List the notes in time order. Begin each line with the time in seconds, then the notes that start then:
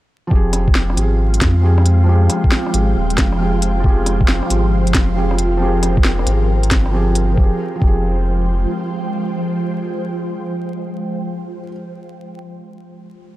0.27 F1 F3 C4 F5
0.31 F3 F4 G4, kick
0.35 G#4
0.51 G#3 F4, cross-stick, closed hi-hat
0.56 C5
0.68 kick
0.75 snare
0.83 G5
0.90 F3, cross-stick
0.96 G#1 C4 G4, closed hi-hat
1.01 G#4
1.34 closed hi-hat
1.41 F2, kick, snare, closed hi-hat
1.61 F3 C4 G4
1.65 G#4
1.78 cross-stick
1.86 closed hi-hat
2.03 F3 C4
2.09 G4 G#4
2.30 cross-stick, closed hi-hat
2.44 kick
2.52 snare
2.66 F3, cross-stick
2.73 G#1 C4 G4, closed hi-hat
2.78 G#4
2.96 D#1
3.10 closed hi-hat
3.18 F1, kick, snare, closed hi-hat
3.32 cross-stick
3.38 F3 C4 G4 G#4
3.62 closed hi-hat
3.80 F3 C4
3.84 G4, kick
3.88 G#4
4.06 cross-stick, closed hi-hat
4.21 kick
4.28 snare
4.43 F3, cross-stick
4.49 G#1 C4 G4 A#4, closed hi-hat
4.54 G#4
4.72 G1
4.87 closed hi-hat
4.94 F1, kick, snare, closed hi-hat
5.15 F3 C4 G4 G#4
5.31 cross-stick
5.38 closed hi-hat
5.57 F3 C4
5.62 G4 G#4
5.83 cross-stick, closed hi-hat
5.97 kick
6.05 snare
6.19 cross-stick
6.23 G#1 F3 C4, closed hi-hat
6.29 G4 G#4
6.63 closed hi-hat
6.71 G1, kick, snare, closed hi-hat
6.86 cross-stick
6.91 F3 C4 G4
6.96 G#4
7.15 closed hi-hat
7.31 F3 C4
7.37 F1 F3 G4, kick
7.44 F4 G#4
7.54 G#3
7.58 C5
7.65 G5
7.75 F3
7.79 F1 C4 G4, kick
7.87 G#4